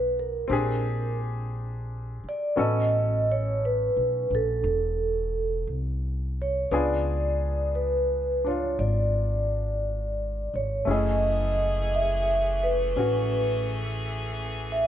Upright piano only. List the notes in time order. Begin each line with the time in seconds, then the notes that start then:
Already playing: B3 D4 F#4
0.48 C4 D4 G4
0.53 G#4
2.56 B3 C#4 F#4 A4
6.72 B3 D4 F4 G#4
8.45 D4 F4
10.85 A3 C#4 E4
10.91 G#4
12.97 C#4 F#4